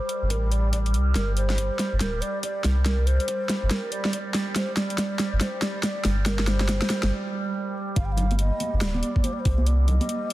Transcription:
Already playing: G3 C5
0.09 closed hi-hat
0.22 G1
0.30 A1 A#4, kick, closed hi-hat
0.51 D5, closed hi-hat
0.72 D5, kick, closed hi-hat
0.86 closed hi-hat
0.94 C2, closed hi-hat
1.15 G1 A#4, kick, snare, closed hi-hat
1.36 C5, closed hi-hat
1.50 snare, closed hi-hat
1.58 kick, closed hi-hat
1.79 snare, closed hi-hat
1.92 G1
2.00 A#4, kick, snare, closed hi-hat
2.21 D5, closed hi-hat
2.43 D5, kick, closed hi-hat
2.64 C2, snare, open hi-hat
2.85 A#4, kick, snare, closed hi-hat
3.06 C5, closed hi-hat
3.20 closed hi-hat
3.28 kick, closed hi-hat
3.49 snare, closed hi-hat
3.63 G1
3.70 A#4, kick, snare, closed hi-hat
3.92 D5, closed hi-hat
4.05 snare
4.13 D5, kick, closed hi-hat
4.34 snare, open hi-hat
4.55 C5, kick, snare, closed hi-hat
4.77 D5, snare, closed hi-hat
4.90 closed hi-hat
4.98 kick, snare, closed hi-hat
5.19 snare, closed hi-hat
5.33 G1
5.41 C5, kick, snare, closed hi-hat
5.62 D5, snare, closed hi-hat
5.83 D5, kick, snare, closed hi-hat
6.05 G1, snare, open hi-hat
6.26 A#4, kick, snare, closed hi-hat
6.39 snare
6.47 C5, snare, closed hi-hat
6.60 snare, closed hi-hat
6.69 kick, snare, closed hi-hat
6.82 snare
6.90 snare, closed hi-hat
7.03 G1, snare
7.96 G1 G3 F5, kick, closed hi-hat
8.05 G5
8.12 F5
8.17 closed hi-hat, low conga
8.31 closed hi-hat, high conga
8.39 D#5, closed hi-hat
8.60 closed hi-hat, high conga
8.73 G1
8.81 D5, snare, closed hi-hat
8.94 high conga
9.03 closed hi-hat
9.16 kick
9.24 C5, closed hi-hat, high conga
9.33 D5
9.40 C5
9.45 C2, kick, open hi-hat
9.58 high conga
9.66 D5, closed hi-hat
9.88 D#5, closed hi-hat, low conga
10.01 closed hi-hat, high conga
10.09 closed hi-hat

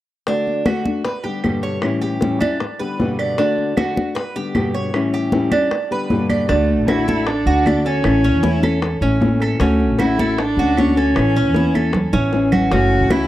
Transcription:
0.27 D3 A3 D4 F#4, high bongo, high conga
0.47 high conga
0.66 D3 A3 D4 F#4, high bongo, high conga, claves
0.85 A3 D4 F#4, high bongo, high conga
1.05 B4, muted nylon-string guitar stroke, high bongo, high conga
1.24 D3 G3 B3 G4, high conga
1.44 G2 B2 D3 G3 B3 G4, high bongo, low bongo, high conga, claves
1.63 C#5, high bongo, high conga
1.82 A2 E3 G3 C#4 E4, high bongo, high conga, claves
2.01 G4, high conga
2.21 A2 E3 G3 C#4 E4, high bongo, high conga
2.41 G3 C#4 D4 E4, high bongo, high conga, claves
2.60 muted nylon-string guitar stroke, high bongo, high conga
2.80 D3 G3 B3 G4 B4, high conga
2.99 G2 B2 D3 G3 B3 G4, high bongo, low bongo, high conga
3.19 D5, high bongo, claves
3.38 D3 A3 D4 F#4, high bongo, high conga
3.58 high conga
3.76 D3 A3 D4 F#4, high bongo, high conga, claves
3.96 A3 D4 F#4, high bongo, high conga
4.15 B4, muted nylon-string guitar stroke, high bongo, high conga
4.36 D3 G3 B3 G4, high conga
4.55 G2 B2 D3 G3 B3 G4, high bongo, low bongo, high conga, claves
4.74 C#5, high bongo, high conga
4.94 A2 E3 G3 C#4 E4, high bongo, high conga, claves
5.13 G4, high conga
5.32 A2 E3 G3 C#4 E4, high bongo, high conga
5.52 G3 D4, high bongo, high conga, claves
5.71 muted nylon-string guitar stroke, high bongo, high conga
5.91 D3 G3 B3 G4 B4, high conga
6.10 G2 B2 D3 G3 B3 G4, high bongo, low bongo, high conga
6.30 D5, high bongo, high conga, claves
6.49 D2 D3 A3 D4 F#4, high bongo
6.69 high conga
6.79 A1
6.88 D3 A3 D4 E4 F#4, high bongo, high conga, claves
7.08 A3 D4 F#4 A4, high bongo, high conga
7.27 D4, muted nylon-string guitar stroke, high bongo, high conga
7.46 D2 A3 D4 F#4, high conga
7.65 D3 A3 D4 F#4 D5, high bongo, low bongo, high conga, claves
7.85 C#4 A4, high bongo, high conga
8.04 A1 E3 A3 C#4 E4, high bongo, high conga, claves
8.24 C#4, high conga
8.34 E2
8.42 E3 A3 C#4 E4, high bongo, high conga
8.62 A3 C#4 E4 A4, high bongo, high conga, claves
8.82 muted nylon-string guitar stroke, high bongo, high conga
9.01 A1 A3 C#4 E4, high conga
9.20 E3 A3 C#4 E4, high bongo, low bongo, high conga
9.40 A4, high bongo, claves
9.60 D2 D3 A3 C#4 F#4, high bongo, high conga
9.80 high conga
9.90 A1
9.99 D3 A3 C#4 E4 F#4, high bongo, high conga, claves
10.18 A3 C#4 F#4 A4, high bongo, high conga
10.38 D4, muted nylon-string guitar stroke, high bongo, high conga
10.57 D2 A3 C#4 F#4, high conga
10.77 D3 A3 C#4 F#4 C#5, high bongo, low bongo, high conga, claves
10.96 C#4 A4, high bongo, high conga
11.15 A1 E3 B3 C#4 E4, high bongo, high conga, claves
11.36 C#4, high conga
11.46 E2
11.54 E3 B3 C#4 E4, high bongo, high conga
11.74 B3 C#4 E4 A4, high bongo, high conga, claves
11.93 muted nylon-string guitar stroke, high bongo, low conga
12.13 A1 B3 C#4 E4, low conga
12.32 E3 B3 C#4 E4, high bongo, low bongo
12.52 F#4, high bongo, low conga, claves
12.71 F#1 C#3 E3 A3 C#4 F#4, high bongo, high conga
12.92 high conga
13.01 C#2
13.10 C#3 E3 A3 C#4 E4 F#4, high bongo, high conga, claves

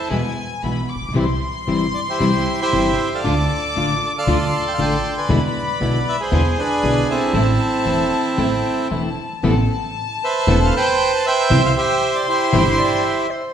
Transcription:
0.09 E2 B2 E3 G#3 B3 E4 G#5
0.63 B1 B2 E3 G#3 B3 E4 B5
0.90 D6
0.95 A1
1.01 A#1
1.09 B1
1.14 C2 C3 E3 G3 C4 E4 C6
1.67 G1 C3 E3 G3 C4 E4
1.94 D5
2.10 E4 G4 C5
2.19 C2 C3 E3 G3 C4 E4
2.62 G4 C5 E5
2.72 G1 C3 E3 G3 C4 E4
3.15 A4 D5 F5
3.24 D2 D3 A3 D4 F4 D6
3.75 A1 D3 A3 D4 F4
4.07 A5
4.18 A4 D5 F5
4.27 D2 D3 A3 D4 F4 C6
4.68 G5
4.74 F5
4.79 A1 D3 A3 D4 F4 G5
5.18 B4 D5 G#5
5.29 E2 B2 D3 G#3 B3 D4 E4 B5
5.81 B1 B2 D3 G#3 B3 D4 E4
6.09 E5
6.21 G#4 C5
6.30 E2 B2 D3 G#3 B3 D4 E4 G#5
6.59 D4 G#4 B4
6.83 B1 B2 D3 G#3 B3 D4 E4
7.10 C4 E4 A4
7.33 A1 E3 A3 C4 E4 A5
7.86 E1 E3 A3 C4 E4
8.36 A1 E3 A3 C4 E4 G5
8.89 E1 E3 A3 C4 E4 A5
9.43 A1 C3 E3 A3 B3 C4 E4 A4 A5
10.24 B4 C5 E5
10.47 E1 C3 E3 A3 B3 C4 E4 A4
10.64 F5
10.76 B4 C5 G5
11.15 A5
11.26 C5 E5 G5
11.50 C2 C3 E3 G3 C4 E4 G4 C6
11.66 F5
11.76 G4 C5 E5
12.15 D5
12.28 E4 G4 C5
12.53 G1 C3 E3 G3 C4 E4 G4
12.78 D5
13.04 E5
13.31 C5

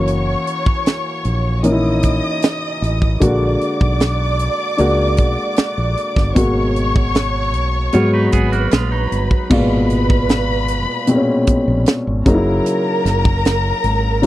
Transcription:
Already playing: F#1 E3 A#3 C#4 F#4 C#5 C#6
0.07 closed hi-hat
0.47 closed hi-hat
0.66 kick
0.86 snare, closed hi-hat
1.24 A#1, closed hi-hat
1.63 E3 A#3 C#4 D#4 D#5 D#6, closed hi-hat
1.72 E4
2.03 kick, closed hi-hat
2.42 snare, closed hi-hat
2.82 A1, closed hi-hat
3.02 kick
3.20 A#1 D3 G#3 A#3 F#4 D5 D6, kick, closed hi-hat
3.61 closed hi-hat
3.81 B1, kick
4.00 snare, closed hi-hat
4.39 closed hi-hat
4.77 C#2 G#3 A#3 D4 F#4, closed hi-hat
5.17 B1, kick, closed hi-hat
5.56 muted fingered electric bass stroke, snare, closed hi-hat
5.78 A#1
5.97 closed hi-hat
6.16 G1, kick, snare
6.35 G#1 B2 G#3 A#3 F#4 C#5 C#6, kick, closed hi-hat
6.76 closed hi-hat
6.96 kick
7.15 snare, closed hi-hat
7.54 B1, closed hi-hat
7.92 G#2 F#3 G#3 B3 F4 F#4 C#5, closed hi-hat
8.14 D#4 B4
8.32 G#1 B3 G#4 B4 B5, kick, closed hi-hat
8.52 A#3 F#4, closed hi-hat
8.71 A#1 G#3 F4, snare, closed hi-hat
8.92 F#3 D#4
9.12 G1, closed hi-hat
9.31 kick
9.50 G#1 A#2 B2 G#3 F4 B4 B5, kick, crash
9.90 closed hi-hat
10.10 kick
10.29 snare, closed hi-hat
10.68 closed hi-hat
11.07 A#2 B2 G#3 C4, closed hi-hat
11.16 C#4
11.47 muted fingered electric bass stroke, kick, closed hi-hat
11.68 A#1
11.86 snare, closed hi-hat
12.07 G#1
12.25 F#1 C#3 F#3 A#3 D#4 A#4 A#5, kick, closed hi-hat
12.34 E4
12.66 closed hi-hat
13.05 F#1, snare, closed hi-hat
13.25 kick
13.45 snare, closed hi-hat
13.84 G#1, closed hi-hat
14.22 C#3 F#3 A#3, closed hi-hat

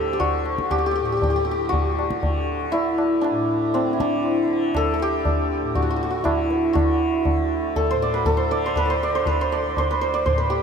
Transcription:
Already playing: D2 A2 D3 G4 A4 C5 D5
0.13 G4
0.20 F#4, tabla tin, tabla ge
0.42 D2, tabla na
0.58 tabla ke
0.71 G4, tabla na, tabla ge
0.78 G4
0.86 G4
0.91 G4
0.96 G4
1.00 A2
1.05 G4
1.12 G4
1.17 G4
1.22 G4, tabla tin, tabla ge
1.30 G4
1.36 G4
1.45 G4
1.51 G4
1.57 D3
1.69 F#4, tabla tin, tabla ge
1.99 tabla na
2.11 tabla ke
2.15 D3
2.23 tabla tin, tabla ge
2.72 D2 E4, tabla tin
2.98 tabla na
3.21 D4, tabla na
3.31 A2
3.74 C4, tabla na
3.89 D3 E4
4.00 D4, tabla ke
4.25 tabla tin
4.47 D3
4.75 A4, tabla na, tabla ge
4.94 A4
5.00 G4, tabla te
5.06 D2
5.25 tabla tin, tabla ge
5.62 A2
5.75 F#4, tabla tin, tabla ge
5.82 F#4
5.90 F#4
5.96 F#4
6.03 F#4
6.10 F#4
6.19 D3
6.24 E4, tabla na, tabla ge
6.50 tabla te
6.73 F#4, tabla na, tabla ge
7.25 tabla tin, tabla ge
7.36 D2
7.76 A4, tabla tin, tabla ge
7.91 A2 C5
8.02 D5
8.14 B4
8.25 A4, tabla tin, tabla ge
8.37 C5
8.51 D3 D5
8.66 C5
8.76 B4, tabla na, tabla ge
8.85 D5
8.90 C5
9.03 D5
9.09 D3
9.15 C5
9.26 B4, tabla tin, tabla ge
9.41 C5
9.52 D5, tabla na
9.67 D2
9.77 C5, tabla tin, tabla ge
9.91 B4
10.01 C5
10.14 D5
10.24 A2 C5, tabla tin, tabla ge
10.38 B4
10.50 G4

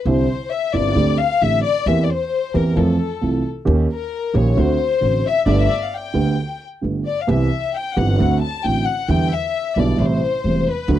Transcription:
0.05 C2 C3 D3 G3 C4 E4 C5
0.52 E5
0.74 G1 G2 D3 G3 C4 E4 D5
0.95 D2 D3 A3 C4 G4
1.20 F5
1.42 A1 A2 D3 A3 C4 G4 E5
1.63 D5
1.86 E2 E3 A#3 C4 G4 E5
2.03 D5
2.10 C5
2.54 E2 E3 A#3 C4 G4 A#4
2.76 F2 E3 F3 A3 C4 F4 A4
3.21 C2 C3 E3 A3 C4 F4
3.65 D#2 D#3 A#3 C#4 G4
3.91 A#4
4.33 A#1 A#2 D#3 A#3 C#4 G4 C#5
4.57 D2 D3 A3 C4 F#4 C5
5.01 A1 A2 D3 A3 C4 F#4
5.27 E5
5.46 G1 G2 D3 A3 B3 G4 D5 E5
5.58 E5
5.70 D5
5.82 F5
5.94 G5
6.14 D2 D3 A3 B3 G4
6.81 G1 G2 D3 A3 B3 G4
7.06 D5
7.21 F5
7.27 C2 C3 E3 B3 C4 G4 E5
7.74 G5
7.95 G1 G2 E3 B3 C4 G4 F#5
8.18 D2 D3 A3 C4 F#4
8.41 A5
8.64 A1 A2 D3 A3 C4 F#4 G5
8.86 F#5
9.09 E2 D3 E3 G3 B3 E4 G5
9.31 E5
9.76 B1 B2 D3 G3 B3 E4 D5
9.98 A1 A2 C3 G3 A3 E4 C5
10.44 E1 E2 C3 G3 A3 E4
10.67 B4
10.88 D2 D3 F#3 A3 F#4

